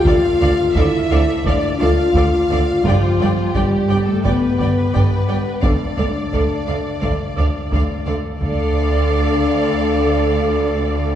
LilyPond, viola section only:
\new Staff \with { instrumentName = "Viola section" } { \time 4/4 \key d \dorian \tempo 4 = 86 <a' d''>8 <a' d''>8 <a' d''>8 <a' d''>8 <a' d''>8 <a' d''>8 <a' d''>8 <a' d''>8 | <g' d''>8 <g' d''>8 <g' d''>8 <g' d''>8 <g' d''>8 <g' d''>8 <g' d''>8 <g' d''>8 | <a' d''>8 <a' d''>8 <a' d''>8 <a' d''>8 <a' d''>8 <a' d''>8 <a' d''>8 <a' d''>8 | <a' d''>1 | }